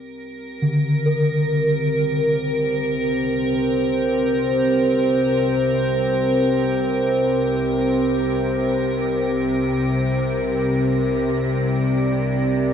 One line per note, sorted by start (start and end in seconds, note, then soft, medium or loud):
0.00 12.73 C2 medium
0.00 12.73 C3 medium
0.00 12.73 C4 medium
0.00 12.73 G4 medium
0.00 12.73 A#4 medium
0.62 7.28 D3 medium
1.06 7.72 A#4 medium
1.89 11.87 C5 medium
11.54 12.73 D5 medium